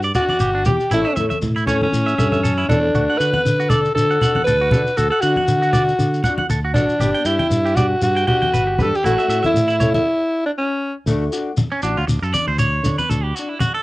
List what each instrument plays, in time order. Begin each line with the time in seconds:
Already playing: fingered electric bass G2
0.03 clean electric guitar D5, shekere
0.14 steel-string acoustic guitar D4, alto saxophone F#4, clean electric guitar D5, low conga, shekere
0.29 clean electric guitar D5, high conga
0.40 fingered electric bass G1, clean electric guitar G4, shekere
0.55 clean electric guitar D4
0.65 fingered electric bass E2, clean electric guitar G4, alto saxophone G4, steel-string acoustic guitar G4, muted steel-string acoustic guitar stroke, high conga, low conga, shekere
0.80 shekere
0.91 fingered electric bass A1, steel-string acoustic guitar E3 A3 C#4 A4, clean electric guitar E4, alto saxophone E4, shekere
1.05 clean electric guitar E5
1.16 fingered electric bass A2, steel-string acoustic guitar A3 C#4 A4, clean electric guitar E5, high conga, shekere
1.30 clean electric guitar E5, high conga, shekere
1.42 fingered electric bass A2, low conga, shekere
1.56 clean electric guitar E4, shekere
1.67 steel-string acoustic guitar A3 C#4 A4, alto saxophone C#4, clean electric guitar C#5, low conga, shekere
1.81 alto saxophone C#4, high conga
1.93 fingered electric bass A2, shekere
2.06 clean electric guitar E5, shekere
2.18 fingered electric bass G2, steel-string acoustic guitar A3 C#4 A4, clean electric guitar E5, low conga, shekere
2.32 clean electric guitar E5, high conga, shekere
2.43 fingered electric bass F#2, clean electric guitar A4, shekere
2.58 clean electric guitar E4
2.68 fingered electric bass E2, steel-string acoustic guitar A3 C#4 A4, alto saxophone D4, clean electric guitar A4, high conga, low conga, shekere
2.94 fingered electric bass D2, steel-string acoustic guitar A3 D4 F#4, clean electric guitar F#4, shekere
3.10 clean electric guitar F#5
3.18 fingered electric bass D3, steel-string acoustic guitar D4 F#4, alto saxophone B4, clean electric guitar F#5, shekere
3.33 clean electric guitar F#5, high conga
3.45 fingered electric bass D3, shekere
3.60 clean electric guitar F#4, shekere
3.69 alto saxophone A4, clean electric guitar D5, muted steel-string acoustic guitar stroke, low conga, shekere
3.73 steel-string acoustic guitar D4
3.85 shekere
3.95 fingered electric bass D3, alto saxophone A4, shekere
4.11 clean electric guitar F#5, shekere
4.21 steel-string acoustic guitar D4 F#4, clean electric guitar F#5, low conga, shekere
4.35 clean electric guitar F#5, high conga
4.44 fingered electric bass D2, clean electric guitar A4, alto saxophone B4, shekere
4.61 clean electric guitar F#4
4.71 fingered electric bass D3, steel-string acoustic guitar D4 F#4, clean electric guitar A4, high conga, low conga, shekere
4.87 shekere
4.97 fingered electric bass D2, clean electric guitar F#4, alto saxophone A4, shekere
5.10 alto saxophone A4, clean electric guitar F#5
5.21 fingered electric bass D3, alto saxophone F#4, steel-string acoustic guitar F#4, clean electric guitar F#5, shekere
5.25 steel-string acoustic guitar D4
5.36 clean electric guitar F#5, high conga
5.48 fingered electric bass D3, shekere
5.62 clean electric guitar F#4, shekere
5.73 steel-string acoustic guitar D4 F#4, clean electric guitar D5, low conga, shekere
5.89 shekere
5.99 fingered electric bass D3, shekere
6.14 shekere
6.24 steel-string acoustic guitar D4 F#4, clean electric guitar F#5, low conga, shekere
6.38 clean electric guitar F#5, high conga
6.50 fingered electric bass D2, clean electric guitar A4, shekere
6.65 clean electric guitar F#4
6.74 fingered electric bass A1, alto saxophone D4, steel-string acoustic guitar D4 F#4, clean electric guitar A4, high conga, low conga, shekere
6.89 shekere
6.99 fingered electric bass G1, steel-string acoustic guitar B3 G4, clean electric guitar G4, muted steel-string acoustic guitar stroke, shekere
7.14 clean electric guitar G5
7.25 fingered electric bass G2, steel-string acoustic guitar D4 G4, alto saxophone E4, clean electric guitar G5, shekere
7.39 clean electric guitar G5, high conga
7.50 fingered electric bass G2, shekere
7.66 clean electric guitar G4, shekere
7.75 steel-string acoustic guitar D4 G4, alto saxophone F#4, clean electric guitar D5, low conga, shekere
8.02 fingered electric bass G2, alto saxophone F#4, shekere
8.17 clean electric guitar G5, shekere
8.27 steel-string acoustic guitar D4 G4, alto saxophone F#4, clean electric guitar G5, low conga
8.42 clean electric guitar G5, high conga
8.53 fingered electric bass G1, clean electric guitar B4, shekere
8.67 clean electric guitar G4
8.78 fingered electric bass G2, steel-string acoustic guitar D4 G4, alto saxophone A4, clean electric guitar B4, high conga, low conga, shekere
8.95 alto saxophone G4, shekere
9.03 fingered electric bass A1, steel-string acoustic guitar E3 A3 C#4 A4, clean electric guitar E4, alto saxophone F#4, shekere
9.18 clean electric guitar E5, shekere
9.28 fingered electric bass A2, steel-string acoustic guitar A3 C#4 A4, clean electric guitar E5, shekere
9.43 alto saxophone E4, clean electric guitar E5, high conga, shekere
9.54 fingered electric bass A2, shekere
9.68 clean electric guitar E4, shekere
9.80 steel-string acoustic guitar C#4 A4, clean electric guitar C#5, low conga, shekere
9.94 alto saxophone E4, high conga, shekere
10.46 alto saxophone D4
10.58 alto saxophone C#4
11.06 fingered electric bass D2, steel-string acoustic guitar A3 D4 F#4, shekere
11.32 steel-string acoustic guitar D4 F#4, shekere
11.57 high conga, shekere
11.72 clean electric guitar C#4
11.82 fingered electric bass A1, clean electric guitar D4, steel-string acoustic guitar D4 F#4, shekere
11.97 fingered electric bass D2, clean electric guitar F4
12.08 fingered electric bass D2, muted clean electric guitar stroke, shekere
12.22 fingered electric bass F#2, clean electric guitar A4, shekere
12.34 steel-string acoustic guitar D4, clean electric guitar D5, muted steel-string acoustic guitar stroke, high conga, shekere
12.48 fingered electric bass D2, clean electric guitar C5
12.59 clean electric guitar C#5, shekere
12.83 fingered electric bass D3, steel-string acoustic guitar D4, muted steel-string acoustic guitar stroke, low conga, shekere
12.98 clean electric guitar B4, high conga, shekere
13.10 fingered electric bass D2, clean electric guitar A4, shekere
13.23 clean electric guitar G4
13.35 steel-string acoustic guitar D4, clean electric guitar F#4, shekere
13.49 clean electric guitar E4
13.60 clean electric guitar F#4, high conga, shekere
13.74 clean electric guitar A4